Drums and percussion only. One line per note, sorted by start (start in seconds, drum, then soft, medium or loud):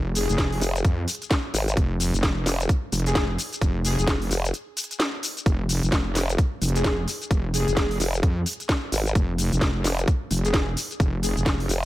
0.15 open hi-hat loud
0.15 shaker medium
0.29 closed hi-hat medium
0.29 shaker soft
0.38 kick loud
0.38 snare loud
0.38 closed hi-hat medium
0.38 shaker soft
0.52 open hi-hat medium
0.61 open hi-hat loud
0.61 shaker medium
0.76 closed hi-hat medium
0.76 shaker soft
0.85 kick loud
0.85 closed hi-hat medium
0.85 shaker soft
1.08 open hi-hat loud
1.08 shaker medium
1.15 closed hi-hat medium
1.22 closed hi-hat medium
1.22 shaker soft
1.31 kick loud
1.31 snare loud
1.31 closed hi-hat medium
1.31 shaker soft
1.54 open hi-hat loud
1.54 shaker medium
1.68 closed hi-hat medium
1.68 shaker soft
1.77 kick loud
1.77 closed hi-hat medium
1.77 shaker soft
2.00 open hi-hat loud
2.00 shaker medium
2.14 closed hi-hat medium
2.14 shaker soft
2.23 kick loud
2.23 snare loud
2.23 closed hi-hat medium
2.23 shaker soft
2.46 snare medium
2.46 open hi-hat loud
2.46 shaker medium
2.60 closed hi-hat medium
2.60 shaker soft
2.69 kick loud
2.69 closed hi-hat medium
2.69 shaker soft
2.92 open hi-hat loud
2.92 shaker medium
2.99 closed hi-hat medium
3.06 closed hi-hat medium
3.06 shaker soft
3.15 kick loud
3.15 snare loud
3.15 closed hi-hat medium
3.15 shaker soft
3.39 open hi-hat loud
3.39 shaker medium
3.53 closed hi-hat medium
3.53 shaker soft
3.61 kick loud
3.61 closed hi-hat medium
3.61 shaker soft
3.85 open hi-hat loud
3.85 shaker medium
3.99 closed hi-hat medium
3.99 shaker soft
4.07 kick loud
4.07 snare loud
4.07 closed hi-hat medium
4.07 shaker soft
4.22 open hi-hat medium
4.31 open hi-hat loud
4.31 shaker medium
4.45 closed hi-hat medium
4.45 shaker soft
4.54 closed hi-hat medium
4.54 shaker soft
4.77 open hi-hat loud
4.77 shaker medium
4.84 closed hi-hat medium
4.91 closed hi-hat medium
4.91 shaker soft
5.00 snare loud
5.00 closed hi-hat medium
5.00 shaker soft
5.23 open hi-hat loud
5.23 shaker medium
5.37 closed hi-hat medium
5.37 shaker soft
5.46 kick loud
5.46 closed hi-hat medium
5.46 shaker soft
5.69 open hi-hat loud
5.69 shaker medium
5.83 closed hi-hat medium
5.83 shaker soft
5.92 kick loud
5.92 snare loud
5.92 closed hi-hat medium
5.92 shaker soft
6.15 snare medium
6.15 open hi-hat loud
6.15 shaker medium
6.29 closed hi-hat medium
6.29 shaker soft
6.38 kick loud
6.38 closed hi-hat medium
6.38 shaker soft
6.62 open hi-hat loud
6.62 shaker medium
6.69 closed hi-hat medium
6.76 closed hi-hat medium
6.76 shaker soft
6.84 kick loud
6.84 snare loud
6.84 closed hi-hat medium
6.84 shaker soft
7.08 open hi-hat loud
7.08 shaker medium
7.22 closed hi-hat medium
7.22 shaker soft
7.31 kick loud
7.31 closed hi-hat medium
7.31 shaker soft
7.54 open hi-hat loud
7.54 shaker medium
7.68 closed hi-hat medium
7.68 shaker soft
7.77 kick loud
7.77 snare loud
7.77 closed hi-hat medium
7.77 shaker soft
7.91 open hi-hat medium
8.00 open hi-hat loud
8.00 shaker medium
8.14 closed hi-hat medium
8.14 shaker soft
8.23 kick loud
8.23 closed hi-hat medium
8.23 shaker soft
8.46 open hi-hat loud
8.46 shaker medium
8.53 closed hi-hat medium
8.60 closed hi-hat medium
8.60 shaker soft
8.69 kick loud
8.69 snare loud
8.69 closed hi-hat medium
8.69 shaker soft
8.92 open hi-hat loud
8.92 shaker medium
9.06 closed hi-hat medium
9.06 shaker soft
9.15 kick loud
9.15 closed hi-hat medium
9.15 shaker soft
9.38 open hi-hat loud
9.38 shaker medium
9.52 closed hi-hat medium
9.52 shaker soft
9.61 kick loud
9.61 snare loud
9.61 closed hi-hat medium
9.61 shaker soft
9.84 snare medium
9.84 open hi-hat loud
9.84 shaker medium
9.99 closed hi-hat medium
9.99 shaker soft
10.08 kick loud
10.08 closed hi-hat medium
10.08 shaker soft
10.31 open hi-hat loud
10.31 shaker medium
10.38 closed hi-hat medium
10.45 closed hi-hat medium
10.45 shaker soft
10.54 kick loud
10.54 snare loud
10.54 closed hi-hat medium
10.54 shaker soft
10.77 open hi-hat loud
10.77 shaker medium
10.91 closed hi-hat soft
10.91 shaker soft
11.00 kick loud
11.00 closed hi-hat medium
11.00 shaker soft
11.23 open hi-hat loud
11.23 shaker medium
11.37 closed hi-hat soft
11.37 shaker soft
11.46 kick loud
11.46 snare loud
11.46 closed hi-hat medium
11.46 shaker soft
11.60 open hi-hat medium
11.69 open hi-hat loud
11.69 shaker medium